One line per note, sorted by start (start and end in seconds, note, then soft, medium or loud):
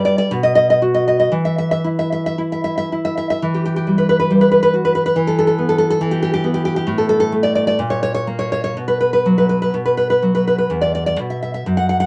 0.00 0.28 G2 loud
0.00 0.30 G3 medium
0.05 0.17 D5 medium
0.18 0.30 D5 medium
0.31 1.31 B2 medium
0.43 0.54 D#5 medium
0.55 0.68 D#5 medium
0.70 0.82 D#5 medium
0.82 1.34 F#4 medium
0.94 1.06 D#5 medium
1.08 1.18 D#5 medium
1.20 1.33 D#5 medium
1.32 3.38 E3 medium
1.45 1.57 E5 medium
1.58 1.70 E5 medium
1.71 1.85 E5 medium
1.84 2.37 E4 medium
1.99 2.11 E5 medium
2.12 2.25 E5 medium
2.26 2.39 E5 medium
2.38 2.91 E4 medium
2.52 2.63 E5 medium
2.64 2.76 E5 medium
2.78 2.92 E5 medium
2.92 3.42 E4 soft
3.05 3.16 E5 medium
3.18 3.29 E5 medium
3.30 3.42 E5 medium
3.42 5.13 E3 medium
3.54 3.64 G4 medium
3.65 3.75 G4 medium
3.76 3.88 G4 medium
3.87 4.29 G3 soft
3.98 4.08 B4 medium
4.09 4.18 B4 medium
4.20 4.31 B4 medium
4.31 5.16 G3 medium
4.41 4.50 B4 medium
4.52 4.61 B4 medium
4.63 4.74 B4 medium
4.74 5.17 F#4 soft
4.85 4.94 B4 medium
4.95 5.05 B4 medium
5.06 5.17 B4 medium
5.16 5.98 E3 medium
5.27 5.37 A4 medium
5.39 5.46 A4 medium
5.47 5.58 A4 medium
5.58 6.01 B3 medium
5.69 5.77 A4 medium
5.78 5.89 A4 medium
5.90 6.01 A4 medium
6.01 6.85 E3 medium
6.11 6.21 G4 medium
6.22 6.32 G4 medium
6.34 6.44 G4 medium
6.44 6.88 B3 medium
6.54 6.64 G4 medium
6.65 6.75 G4 medium
6.76 6.87 G4 medium
6.87 7.76 A2 medium
6.98 7.08 A4 medium
7.09 7.19 A4 medium
7.20 7.32 A4 medium
7.32 7.79 A3 medium
7.43 7.54 D5 medium
7.55 7.66 D5 medium
7.67 7.79 D5 medium
7.79 8.73 A#2 medium
7.90 8.01 C#5 medium
8.03 8.13 C#5 medium
8.14 8.27 C#5 medium
8.27 8.76 A#3 medium
8.39 8.51 C#5 medium
8.52 8.63 C#5 medium
8.64 8.76 C#5 medium
8.77 9.71 B2 medium
8.88 8.99 B4 medium
9.00 9.12 B4 medium
9.13 9.25 B4 medium
9.26 9.74 F#3 medium
9.38 9.48 B4 medium
9.49 9.61 B4 medium
9.62 9.74 B4 medium
9.74 10.69 B2 medium
9.86 9.96 B4 medium
9.97 10.09 B4 medium
10.10 10.23 B4 medium
10.22 10.71 F#3 soft
10.35 10.46 B4 medium
10.47 10.57 B4 medium
10.58 10.71 B4 medium
10.70 11.19 E2 medium
10.81 10.94 D5 medium
10.95 11.05 D5 medium
11.06 11.19 D5 medium
11.19 11.66 B2 soft
11.30 11.41 E5 medium
11.43 11.53 E5 medium
11.54 11.66 E5 medium
11.66 12.06 F#2 medium
11.77 11.88 F#5 medium
11.89 11.99 F#5 medium
12.00 12.06 F#5 medium